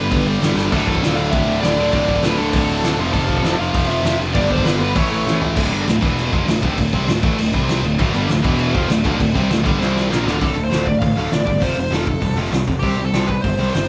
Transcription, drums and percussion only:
0.11 kick, open hi-hat
0.42 snare, open hi-hat
0.57 snare
0.72 kick, crash
0.88 kick
0.95 kick
1.03 snare, open hi-hat
1.33 kick, open hi-hat
1.63 snare, open hi-hat
1.93 kick, open hi-hat
2.08 kick
2.16 kick
2.23 snare, open hi-hat
2.53 kick, open hi-hat
2.84 snare, open hi-hat
3.14 kick, open hi-hat
3.29 kick
3.37 kick
3.44 snare, open hi-hat
3.74 kick, open hi-hat
4.05 snare, open hi-hat
4.35 kick, open hi-hat
4.50 kick
4.58 kick
4.65 snare, open hi-hat
4.96 kick, open hi-hat
5.27 snare
5.41 floor tom
5.57 kick, crash
5.73 crash
5.88 snare, crash
6.02 kick, crash
6.19 crash
6.33 kick, crash
6.48 snare, crash
6.63 kick, crash
6.78 kick, crash
6.93 kick, crash
7.08 snare, crash
7.23 kick, crash
7.38 crash
7.54 kick, crash
7.69 snare, crash
7.84 crash
7.99 kick, crash
8.14 crash
8.29 snare, crash
8.44 kick, crash
8.59 crash
8.75 kick, crash
8.90 snare, crash
9.05 kick, crash
9.20 kick, crash
9.35 kick, crash
9.51 snare, crash
9.66 kick, crash
9.81 snare
9.97 snare
10.12 snare
10.27 snare
10.41 kick, open hi-hat
10.71 snare, open hi-hat
10.87 kick
11.02 kick, open hi-hat
11.32 snare, open hi-hat
11.47 kick
11.62 kick, open hi-hat
11.92 snare, open hi-hat
12.07 kick
12.22 kick, open hi-hat
12.52 snare, open hi-hat
12.68 kick
12.82 kick, open hi-hat
13.14 snare, open hi-hat
13.29 kick
13.44 kick, open hi-hat
13.75 snare, open hi-hat

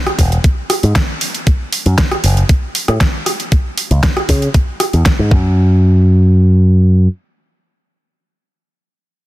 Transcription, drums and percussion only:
0.07 cross-stick, closed hi-hat
0.19 kick, open hi-hat
0.32 closed hi-hat
0.44 kick, closed hi-hat
0.70 cross-stick, open hi-hat
0.83 closed hi-hat
0.95 kick, snare, closed hi-hat
1.21 open hi-hat
1.35 closed hi-hat
1.47 kick, closed hi-hat
1.72 open hi-hat
1.86 closed hi-hat
1.98 kick, snare, closed hi-hat
2.11 cross-stick, closed hi-hat
2.24 open hi-hat
2.37 closed hi-hat
2.49 kick, closed hi-hat
2.75 open hi-hat
2.88 cross-stick, closed hi-hat
3.01 kick, snare, closed hi-hat
3.26 cross-stick, open hi-hat
3.40 closed hi-hat
3.52 kick, closed hi-hat
3.77 open hi-hat
3.91 closed hi-hat
4.03 kick, snare, closed hi-hat
4.17 cross-stick, closed hi-hat
4.29 kick, open hi-hat
4.42 closed hi-hat
4.54 kick, closed hi-hat
4.80 cross-stick, open hi-hat
4.93 closed hi-hat
5.06 kick, snare, closed hi-hat
5.31 kick

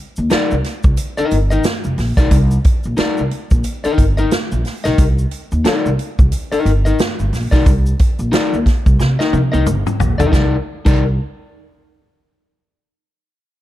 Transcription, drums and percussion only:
0.16 shaker
0.30 snare, closed hi-hat, shaker
0.51 shaker
0.64 snare, closed hi-hat
0.83 kick, shaker
0.97 closed hi-hat, shaker
1.18 shaker
1.31 closed hi-hat, shaker
1.51 shaker
1.64 snare, closed hi-hat, shaker
1.84 shaker
1.98 snare, open hi-hat, shaker
2.17 kick, snare, closed hi-hat, shaker
2.31 kick, closed hi-hat, shaker
2.51 shaker
2.64 kick, closed hi-hat
2.84 shaker
2.97 snare, closed hi-hat, shaker
3.17 shaker
3.31 closed hi-hat
3.51 kick, shaker
3.64 closed hi-hat, shaker
3.84 closed hi-hat, shaker
3.98 kick, closed hi-hat, shaker
4.18 shaker
4.31 snare, closed hi-hat, shaker
4.52 shaker
4.65 snare, open hi-hat, shaker
4.85 snare, closed hi-hat, shaker
4.98 kick, closed hi-hat, shaker
5.18 shaker
5.31 closed hi-hat
5.52 shaker
5.65 snare, closed hi-hat, shaker
5.86 shaker
5.99 closed hi-hat
6.19 kick, shaker
6.32 closed hi-hat, shaker
6.52 closed hi-hat, shaker
6.66 closed hi-hat, shaker
6.86 shaker
6.99 snare, closed hi-hat, shaker
7.19 shaker
7.33 snare, open hi-hat, shaker
7.52 kick, snare, shaker
7.66 kick, closed hi-hat, shaker
7.86 shaker
7.99 kick, closed hi-hat
8.19 shaker
8.33 snare, closed hi-hat, shaker
8.53 shaker
8.66 kick, snare, closed hi-hat
8.86 kick, shaker
9.00 snare, shaker
9.20 snare, shaker
9.33 high tom, shaker
9.53 high tom, shaker
9.66 mid tom, shaker
9.87 mid tom, shaker
10.00 floor tom, shaker
10.20 floor tom, shaker
10.33 kick, snare, shaker
10.86 kick, crash, shaker

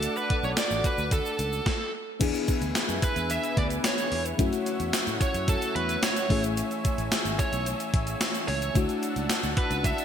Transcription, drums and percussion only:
0.03 closed hi-hat, shaker
0.16 shaker
0.30 kick, closed hi-hat
0.43 shaker
0.57 snare, closed hi-hat, shaker
0.71 shaker
0.84 kick, closed hi-hat, shaker
0.98 shaker
1.11 kick, closed hi-hat, shaker
1.26 shaker
1.39 closed hi-hat, shaker
1.53 shaker
1.66 kick, snare
2.21 kick, closed hi-hat, crash, shaker
2.34 closed hi-hat, shaker
2.48 kick, closed hi-hat, shaker
2.62 closed hi-hat, shaker
2.75 snare, closed hi-hat, tambourine, shaker
2.89 closed hi-hat, shaker
3.02 kick, closed hi-hat, shaker
3.16 closed hi-hat, shaker
3.30 closed hi-hat, shaker
3.44 closed hi-hat, shaker
3.57 kick, closed hi-hat
3.70 closed hi-hat, shaker
3.84 snare, closed hi-hat, tambourine, shaker
3.98 closed hi-hat, shaker
4.12 open hi-hat
4.25 closed hi-hat, shaker
4.39 kick, closed hi-hat, shaker
4.53 closed hi-hat, shaker
4.66 closed hi-hat, shaker
4.80 closed hi-hat, shaker
4.93 snare, closed hi-hat, tambourine, shaker
5.07 closed hi-hat, shaker
5.21 kick, closed hi-hat, shaker
5.34 closed hi-hat, shaker
5.48 kick, closed hi-hat, shaker
5.62 closed hi-hat, shaker
5.76 closed hi-hat
5.89 closed hi-hat, shaker
6.03 snare, closed hi-hat, tambourine, shaker
6.16 closed hi-hat, shaker
6.30 kick, open hi-hat
6.44 closed hi-hat, shaker
6.57 closed hi-hat, shaker
6.71 closed hi-hat, shaker
6.85 kick, closed hi-hat, shaker
6.98 closed hi-hat, shaker
7.12 snare, closed hi-hat, tambourine, shaker
7.25 closed hi-hat, shaker
7.39 kick, closed hi-hat, shaker
7.53 closed hi-hat, shaker
7.66 closed hi-hat, shaker
7.80 closed hi-hat, shaker
7.94 kick, closed hi-hat
8.07 closed hi-hat, shaker
8.21 snare, closed hi-hat, tambourine, shaker
8.35 closed hi-hat, shaker
8.48 open hi-hat
8.62 closed hi-hat, shaker
8.75 kick, closed hi-hat, shaker
8.89 closed hi-hat, shaker
9.03 closed hi-hat, shaker
9.16 closed hi-hat, shaker
9.30 snare, closed hi-hat, tambourine, shaker
9.43 closed hi-hat, shaker
9.57 kick, closed hi-hat
9.71 closed hi-hat, shaker
9.84 kick, closed hi-hat, shaker
9.98 closed hi-hat, shaker

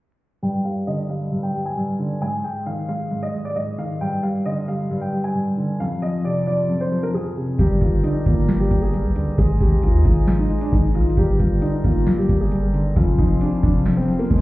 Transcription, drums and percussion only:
7.59 kick, closed hi-hat
7.81 kick, closed hi-hat
8.04 closed hi-hat
8.26 kick, closed hi-hat
8.49 snare, closed hi-hat
8.56 closed hi-hat
8.64 closed hi-hat
8.71 kick, closed hi-hat
8.94 closed hi-hat
9.16 closed hi-hat
9.38 kick, closed hi-hat
9.61 kick, closed hi-hat
9.72 kick
9.83 closed hi-hat
10.05 kick, closed hi-hat
10.27 snare, closed hi-hat
10.50 closed hi-hat
10.61 closed hi-hat
10.72 kick, closed hi-hat
10.95 closed hi-hat
11.02 closed hi-hat
11.10 closed hi-hat
11.17 kick, closed hi-hat
11.40 kick, closed hi-hat
11.62 closed hi-hat
11.84 kick, closed hi-hat
12.07 snare, closed hi-hat
12.14 closed hi-hat
12.22 closed hi-hat
12.29 kick, closed hi-hat
12.52 closed hi-hat
12.74 closed hi-hat
12.96 kick, closed hi-hat
13.19 kick, closed hi-hat
13.41 closed hi-hat
13.63 kick, closed hi-hat
13.86 snare, closed hi-hat
13.91 closed hi-hat
13.97 closed hi-hat
14.03 closed hi-hat
14.08 closed hi-hat
14.14 closed hi-hat
14.19 closed hi-hat
14.25 closed hi-hat
14.30 kick, closed hi-hat
14.38 closed hi-hat

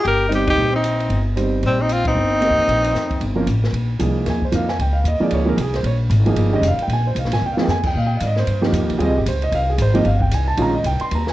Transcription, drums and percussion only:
0.05 ride
0.32 hi-hat pedal, ride
0.47 kick, ride
0.84 hi-hat pedal, ride
1.00 ride
1.10 ride
1.37 hi-hat pedal, ride
1.63 ride
1.89 hi-hat pedal, ride
2.05 kick, ride
2.42 hi-hat pedal, ride
2.69 ride
2.84 ride
2.95 snare, hi-hat pedal
3.11 kick, ride
3.21 ride
3.47 hi-hat pedal, ride
3.64 snare
3.74 ride
4.00 hi-hat pedal, ride
4.26 snare, ride
4.42 kick
4.52 hi-hat pedal, ride
4.68 snare
4.79 ride
5.05 hi-hat pedal, ride
5.31 ride
5.58 hi-hat pedal, ride
5.74 snare, ride
5.84 ride
6.10 hi-hat pedal, ride
6.26 ride
6.36 ride
6.63 hi-hat pedal, ride
6.79 ride
6.90 ride
7.16 hi-hat pedal, ride
7.25 snare
7.32 snare, ride
7.58 snare
7.68 snare, hi-hat pedal
7.83 kick, crash
8.20 hi-hat pedal, ride
8.36 snare
8.47 ride
8.63 snare
8.73 hi-hat pedal, ride
8.90 ride
9.00 ride
9.26 hi-hat pedal, ride
9.42 ride
9.52 ride
9.78 hi-hat pedal, ride
9.95 ride
10.05 ride
10.21 kick
10.31 hi-hat pedal, ride
10.57 ride
10.84 hi-hat pedal, ride
11.00 ride
11.11 ride
11.27 snare

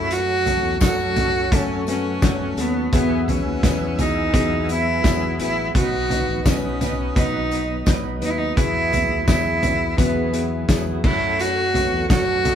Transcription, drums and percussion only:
0.11 closed hi-hat, tambourine
0.46 closed hi-hat, floor tom, tambourine
0.81 kick, snare, closed hi-hat, tambourine
1.16 closed hi-hat, floor tom, tambourine
1.52 kick, closed hi-hat, tambourine
1.87 closed hi-hat, tambourine
2.22 kick, snare, closed hi-hat, tambourine
2.57 closed hi-hat, tambourine
2.93 kick, closed hi-hat
3.28 closed hi-hat, floor tom, tambourine
3.63 kick, snare, closed hi-hat, tambourine
3.99 closed hi-hat, floor tom, tambourine
4.34 kick, closed hi-hat, tambourine
4.69 closed hi-hat, tambourine
5.04 kick, snare, closed hi-hat, tambourine
5.39 closed hi-hat, tambourine
5.75 kick, closed hi-hat, tambourine
6.10 closed hi-hat, floor tom, tambourine
6.46 kick, snare, closed hi-hat, tambourine
6.81 closed hi-hat, floor tom, tambourine
7.16 kick, closed hi-hat, tambourine
7.51 closed hi-hat, tambourine
7.86 kick, snare, closed hi-hat, tambourine
8.22 closed hi-hat, tambourine
8.57 kick, closed hi-hat, tambourine
8.93 closed hi-hat, floor tom, tambourine
9.28 kick, snare, closed hi-hat, tambourine
9.63 closed hi-hat, floor tom, tambourine
9.98 kick, closed hi-hat, tambourine
10.33 closed hi-hat, tambourine
10.69 kick, snare, closed hi-hat, tambourine
11.04 kick, tambourine, crash
11.39 closed hi-hat, tambourine
11.74 closed hi-hat, floor tom, tambourine
12.10 kick, snare, closed hi-hat, tambourine
12.45 closed hi-hat, floor tom, tambourine

